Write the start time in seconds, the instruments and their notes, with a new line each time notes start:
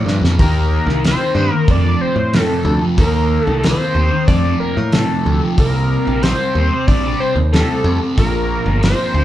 0.06 picked electric bass G2, distorted electric guitar A#2 F3, snare
0.10 distorted electric guitar A#3
0.21 picked electric bass F2, distorted electric guitar A#3, snare
0.27 distorted electric guitar F3
0.39 picked electric bass D#2, distorted electric guitar D#3 A#3 D#4, analog synth lead A#4, kick, open hi-hat
0.86 picked electric bass C2, distorted electric guitar A#3 D#4, snare
1.04 distorted electric guitar D#3 A#3 D#4, analog synth lead C5, snare, open hi-hat
1.35 picked electric bass G2, distorted electric guitar D#3 A#3 D#4
1.52 analog synth lead A#4, muted distorted electric guitar stroke
1.68 picked electric bass F2, distorted electric guitar F2 C3 F3, analog synth lead D5, kick, open hi-hat
1.85 distorted electric guitar C3 F3
2.01 analog synth lead C5
2.16 picked electric bass A2, muted distorted electric guitar stroke
2.33 distorted electric guitar F2 C3 F3, analog synth lead A4, snare, open hi-hat
2.65 picked electric bass D2, distorted electric guitar F2 C3 F3
2.82 distorted electric guitar C3 F3
2.98 picked electric bass D#2, distorted electric guitar D#3 A#3 D#4, analog synth lead A#4, kick, open hi-hat
3.43 analog synth lead A4
3.47 picked electric bass C2, distorted electric guitar A#3 D#4
3.64 distorted electric guitar D#3 A#3 D#4, analog synth lead C5, snare, open hi-hat
3.95 picked electric bass D#2, distorted electric guitar D#3 A#3
3.99 distorted electric guitar D#4
4.13 muted distorted electric guitar stroke
4.28 picked electric bass F2, distorted electric guitar F2 C3 F3, analog synth lead D5, kick, open hi-hat
4.45 distorted electric guitar C3 F3
4.60 analog synth lead A#4
4.77 picked electric bass A2, muted distorted electric guitar stroke
4.92 distorted electric guitar F2 C3 F3, analog synth lead A4, snare, open hi-hat
5.25 picked electric bass D2, distorted electric guitar F2 C3 F3
5.41 distorted electric guitar C3 F3
5.57 picked electric bass C2, distorted electric guitar C3 G3 C4, analog synth lead A#4, kick, open hi-hat
6.05 picked electric bass A#1, distorted electric guitar G3 C4
6.22 distorted electric guitar C3 G3 C4, analog synth lead C5, snare, open hi-hat
6.55 picked electric bass D#2, distorted electric guitar C3 G3 C4
6.72 muted distorted electric guitar stroke
6.87 picked electric bass A#1, distorted electric guitar C3 G3 C4, analog synth lead D5, kick, open hi-hat
7.04 distorted electric guitar G3 C4
7.20 analog synth lead C5
7.36 picked electric bass D#2, muted distorted electric guitar stroke
7.52 distorted electric guitar C3 G3 C4, analog synth lead A4, snare, open hi-hat
7.84 picked electric bass F2, distorted electric guitar C3 G3 C4
8.01 distorted electric guitar G3 C4
8.17 picked electric bass A#1, distorted electric guitar A#2 F3 A#3, analog synth lead A#4, kick, open hi-hat
8.65 picked electric bass G1, distorted electric guitar F3 A#3
8.81 distorted electric guitar A#2 F3 A#3, analog synth lead C5, snare, open hi-hat
9.14 picked electric bass D2, distorted electric guitar A#2 F3 A#3